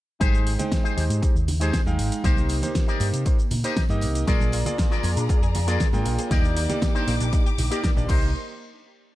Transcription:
0.20 G#1 G#3 D#4 G4 G#4 C5 G5, kick, closed hi-hat, tambourine, high conga, cabasa
0.34 tambourine, high conga, cabasa
0.47 open hi-hat, tambourine
0.59 G#3 D#4 C5 G5, closed hi-hat, tambourine, low conga, cabasa
0.72 kick, snare, closed hi-hat, tambourine, cabasa
0.84 D#4 G4 G#4 C5, tambourine, cabasa
0.97 D#2 G#3 D#4 G4 C5, open hi-hat, tambourine
1.10 G#2, closed hi-hat, tambourine, cabasa
1.22 G#3 D#4 G4 C5, muted clean electric guitar stroke, muted picked electric bass stroke, kick, closed hi-hat, tambourine, cabasa
1.35 D#2, muted clean electric guitar stroke, tambourine, cabasa
1.48 open hi-hat, tambourine, low conga
1.60 G#3 D#4 G4 G#4 C5, closed hi-hat, tambourine, cabasa
1.73 kick, snare, closed hi-hat, tambourine, cabasa
1.86 D#2 G#3 D#4 F5 G5, tambourine, high conga, cabasa
1.98 G#1, muted clean electric guitar stroke, open hi-hat, tambourine
2.11 closed hi-hat, tambourine, cabasa
2.24 C2 A#3 D#4 G4 A#4 C5, kick, closed hi-hat, tambourine, high conga, cabasa
2.37 tambourine, high conga, cabasa
2.49 open hi-hat, tambourine
2.62 A#3 D#4 G4 C5, snare, closed hi-hat, tambourine, low conga, cabasa
2.75 kick, snare, closed hi-hat, tambourine, cabasa
2.87 D#4 G4 A#4 D5, tambourine, cabasa
3.00 G2 A#3 D#4 G4 C5, open hi-hat, tambourine
3.13 C3, closed hi-hat, tambourine, cabasa
3.25 A#3 D#4 G4 C5, muted clean electric guitar stroke, kick, closed hi-hat, tambourine, cabasa
3.38 muted clean electric guitar stroke, tambourine, cabasa
3.51 A#2, open hi-hat, tambourine, low conga
3.64 A#3 D#4 G4 A#4 C5 D#5, closed hi-hat, tambourine, cabasa
3.77 kick, snare, closed hi-hat, tambourine, cabasa
3.89 G2 A#3 D#4 G4 D#5, tambourine, cabasa
4.01 C2, muted clean electric guitar stroke, open hi-hat, tambourine
4.15 closed hi-hat, tambourine, cabasa
4.27 A#1 A#3 F4 G#4 A#4 D5 A#5, kick, closed hi-hat, tambourine, high conga, cabasa
4.40 D4, tambourine, high conga, cabasa
4.52 F4, open hi-hat, tambourine
4.65 A#3 F4 G#4 D5, closed hi-hat, tambourine, low conga, cabasa
4.78 F4, kick, snare, closed hi-hat, tambourine, cabasa
4.91 D4 F4 G#4 A#4 D5, tambourine, cabasa
5.03 F2 A#3 F4 G#4 D5, open hi-hat, tambourine
5.16 A#2 D4, closed hi-hat, tambourine, cabasa
5.29 A#3 F4 G#4 D5, muted clean electric guitar stroke, muted picked electric bass stroke, kick, closed hi-hat, tambourine, cabasa
5.41 F2 G#4, muted clean electric guitar stroke, tambourine, cabasa
5.55 F4, open hi-hat, tambourine, low conga
5.67 A#3 D4 F4 G#4 A#4 D5, closed hi-hat, tambourine, cabasa
5.80 A#3, kick, snare, closed hi-hat, tambourine, cabasa
5.93 G#2 A#3 D4 F4 G#4 G5, tambourine, high conga, cabasa
6.05 A#1 F4, open hi-hat, tambourine
6.18 G#4, closed hi-hat, tambourine, cabasa
6.30 D#2 A#3 D#4 G4 A#4 D5 D6, kick, closed hi-hat, tambourine, high conga, cabasa
6.44 D4, tambourine, high conga, cabasa
6.57 D#4, open hi-hat, tambourine
6.69 A#3 D#4 G4 D5, snare, closed hi-hat, tambourine, low conga, cabasa
6.82 D#4, kick, snare, closed hi-hat, tambourine, cabasa
6.94 D4 D#4 G4 A#4 C5, tambourine, cabasa
7.07 A#1 A#3 D#4 G4 D5, open hi-hat, tambourine
7.20 A#1 D4, closed hi-hat, tambourine, cabasa
7.32 A#3 D#4 G4 D5, muted clean electric guitar stroke, kick, closed hi-hat, tambourine, cabasa
7.45 G4, muted clean electric guitar stroke, tambourine, cabasa
7.58 A#1 D#4, open hi-hat, tambourine, low conga
7.70 A#3 D#4 G4 A#4 D5, closed hi-hat, cabasa
7.83 A#4, kick, snare, closed hi-hat, tambourine, cabasa
7.96 A#1 A#3 D4 D#4 G4 D5, tambourine, cabasa
8.08 C2 A#3 D#4 G4 A#4 C5 D#5 C6, kick, crash, tambourine
8.22 tambourine

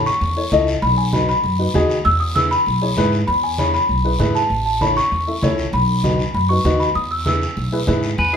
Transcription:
0.06 C#6, short guiro
0.21 E2, high conga, long guiro
0.36 E4 A4 C#5
0.52 C#2 E4 A4 D#5, high conga, short guiro
0.67 short guiro
0.82 B1 B5, high conga, long guiro
0.98 G#5
1.13 D#4 F#4 B4 B5, high conga, short guiro
1.29 B5, short guiro
1.44 F#2, high conga, long guiro
1.59 D#4 F#4 B4
1.74 D#2 D#4 F#4 G#4, high conga, short guiro
1.90 short guiro
2.05 E2 E6, high conga, long guiro
2.20 D#6
2.35 E4 G#4 B4 E6, high conga, short guiro
2.51 B5, short guiro
2.66 B1, high conga, long guiro
2.82 E4 G#4 C#5
2.97 G#2 E4 G#4 B4, high conga, short guiro
3.12 short guiro
3.27 E2 B5, high conga, long guiro
3.44 G#5
3.58 E4 G#4 C#5 B5, high conga, short guiro
3.74 B5, short guiro
3.89 B1, high conga, long guiro
4.04 E4 G#4 B4
4.19 G#2 E4 G#4 B4, high conga, short guiro
4.35 A5, short guiro
4.50 A1, high conga, long guiro
4.66 A5
4.81 E4 A4 C#5 B5, high conga, short guiro
4.97 C#6, short guiro
5.12 E2, high conga, long guiro
5.27 E4 A4 E5
5.42 C#2 E4 A4 C#5, high conga, short guiro
5.58 short guiro
5.73 B1 B5, high conga, long guiro
6.04 D#4 F#4 B4, high conga, short guiro
6.19 short guiro
6.34 F#2 B5, high conga, long guiro
6.49 D#4 F#4 B4 C#6
6.65 D#2 D#4 F#4 B4, high conga, short guiro
6.80 B5, short guiro
6.95 E2 D#6, high conga, long guiro
7.11 E6
7.26 E4 G#4 B4 E6, high conga, short guiro
7.42 short guiro
7.57 B1, high conga, long guiro
7.72 E4 G#4 B4
7.87 G#2 E4 G#4 B4, high conga, short guiro
8.03 short guiro
8.18 E2 B4 G#5, high conga, long guiro
8.33 E4 G#4 B4

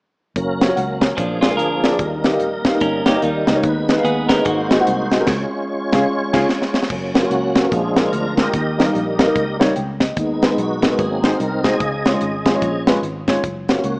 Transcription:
0.36 F#1 F#3 A#3 C#4 A#4, kick, closed hi-hat
0.61 A#3 C#4 F#4 C#5, snare, closed hi-hat
0.68 A#3 C#4 F#4 C#5
0.76 C#2 F#5, closed hi-hat
1.01 C#5, kick, snare, closed hi-hat
1.17 A#1 A#2 F3 A#3 C#4 D4 G#4, kick, closed hi-hat
1.24 D4
1.41 G#3 A#3 F4 G#4 D5, snare, closed hi-hat
1.50 A#3 F4 G#4 F5
1.57 D2 D4 A#4, closed hi-hat
1.83 A#3 F4 G#4 D5, snare, closed hi-hat
1.92 A#3 F4 G#4 D5
1.99 D#2 D#3 G3 A#3 D#4 A#4, kick, closed hi-hat
2.24 A#3 D#4 G4 D#5, snare, closed hi-hat
2.33 A#3 D#4 G4 D#5
2.40 A#1, closed hi-hat
2.65 A#3 D#4 G4 F5, kick, snare, closed hi-hat
2.74 A#3 D#4 G4 D#5
2.81 G1 C#4 A#4, kick, closed hi-hat
3.06 A#3 D#4 G4 C#5, snare, closed hi-hat
3.15 A#3 D#4 G4 D#5
3.22 D#2 G3 D#4, closed hi-hat
3.47 C#2 A#3 D#4 G4 D#5, snare, closed hi-hat
3.55 A#3 D#4 G4 C#5
3.63 D#2 D#3 G#3 B3 D#4 B4, kick, closed hi-hat
3.89 B3 D#4 G#4 D#5, snare, closed hi-hat
3.98 B3 D#4 G#4 F5
4.04 D#2 B3 G#4, closed hi-hat
4.29 B3 C#4 D#4 G#4 A#4 D#5, kick, snare, closed hi-hat
4.40 B3 D#4 G#4 D#5
4.45 G#1 G#2 G#3 A#3 D#4 F#4 C5, kick, closed hi-hat
4.71 C4 F#4 G#4 D#5, snare, closed hi-hat
4.80 C4 F#4 G#4 F#5
4.87 C2, closed hi-hat
5.12 C4 F#4 G#4 D#5, snare, closed hi-hat
5.21 C4 F#4 G#4 A#4
5.27 C#2 G#3 C#4 F4 C#5, kick, snare, crash
5.93 C#2 C#4 F4 G#4 F5, kick, snare
6.33 C#2 C#4 F4 G#4 F5, kick, snare, crash
6.49 snare
6.62 snare
6.74 snare
6.83 snare
6.90 F#1 F#3 A#3 C#4, kick, crash
7.14 A#3 C#4 F4 F#4 C#5, snare, closed hi-hat
7.22 A#3 C#4 F#4 C#5
7.30 C#2 A#3 C#4 F#4, closed hi-hat
7.55 A#3 C#4 F#4 C#5, kick, snare, closed hi-hat
7.64 A#3 C#4 F#4 A#4
7.71 A#1 A#2 F3 G#3 D4 F4 G#4, kick, closed hi-hat
7.96 G#3 D4 F4 A#4, snare, closed hi-hat
8.12 D2 A#4, closed hi-hat
8.37 G#3 D4 F4 G4 A#4 D#5, kick, snare, closed hi-hat
8.54 D#2 D#3, kick, closed hi-hat
8.78 G3 A#3 D#4 A#4, snare, closed hi-hat
8.86 G3 A#3 D#4 A#4
8.95 A#1, closed hi-hat
9.18 G3 A#3 D#4 A#4, kick, snare, closed hi-hat
9.27 G3 A#3 D#4 A#4
9.35 C#2 G3 A#3 D#4, kick, closed hi-hat
9.59 G3 A#3 D#4 C#5, snare, closed hi-hat
9.76 C#2 G5, closed hi-hat
10.00 D#5, kick, snare, closed hi-hat
10.16 D#2 D#3 G#3 B3 D#4, kick, closed hi-hat
10.42 G#3 B3 D#4 F4 B4, snare, closed hi-hat
10.50 G#3 B3 D#4 B4
10.57 B1 B3 D#4 F#4, closed hi-hat
10.82 G#3 B3 D#4 A#4, kick, snare, closed hi-hat
10.90 G#3 B3 D#4 A#4
10.98 G#1 G#2 F#3 A#3 C4 D#4 G#4, kick, closed hi-hat
11.24 G#3 D#4 F#4 C5, snare, closed hi-hat
11.37 C2 A#4, closed hi-hat
11.64 G#3 D#4 F#4 G#4 C5 D#5, kick, snare, closed hi-hat
11.80 C#2 C#3, kick, closed hi-hat
12.05 G#3 C#4 F4 C#5, snare, closed hi-hat
12.14 G#3 C#4 F4 C#5
12.21 G#1, closed hi-hat
12.46 F3 G#3 C#4 F4 G#4, kick, snare, closed hi-hat
12.55 G#3 C#4 F4 C#5
12.62 A#1, kick, closed hi-hat
12.87 G#3 C#4 F4 B4, snare, closed hi-hat
13.02 G#1, closed hi-hat
13.28 G#3 C#4 F4 C#5, kick, snare, closed hi-hat
13.44 F#1, kick, closed hi-hat
13.69 A#3 C#4 F4 F#4 C#5, snare, closed hi-hat
13.78 A#3 C#4 F#4 C#5
13.84 C#2 A#3 C#4 F#4, closed hi-hat

